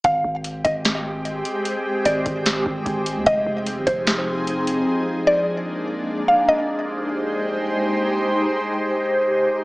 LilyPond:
<<
  \new Staff \with { instrumentName = "Synth pluck" } { \time 4/4 \key aes \lydian \tempo 4 = 149 f''4. ees''8 r2 | r4 d''4 r2 | ees''4. c''8 r2 | r4 d''2~ d''8 f''8 |
ees''2. r4 | r1 | }
  \new Staff \with { instrumentName = "Ambient pad" } { \time 4/4 \key aes \lydian <aes c' g'>1~ | <aes c' g'>1 | <f c' ees' aes'>1 | <aes bes d'>1 |
<aes ees' g' c''>1~ | <aes ees' g' c''>1 | }
  \new Staff \with { instrumentName = "808-style bass" } { \clef bass \time 4/4 \key aes \lydian aes,,8 aes,,4 aes,,2 r8 | r4 aes,,8 aes,,4 aes,,8 aes,,8. ees,16 | f,,8 f,,8. aes,,16 f,,2~ f,,8 | r1 |
r1 | r1 | }
  \new DrumStaff \with { instrumentName = "Drums" } \drummode { \time 4/4 <hh bd>4 hh8 <hh bd>8 <hh sn>4 hh8 hh8 | hh4 hh8 <hh bd>8 <hh sn>8 bd8 <hh bd>8 hh8 | <hh bd>4 hh8 <hh bd>8 <hh sn>4 hh8 hh8 | r4 r4 r4 r4 |
r4 r4 r4 r4 | r4 r4 r4 r4 | }
>>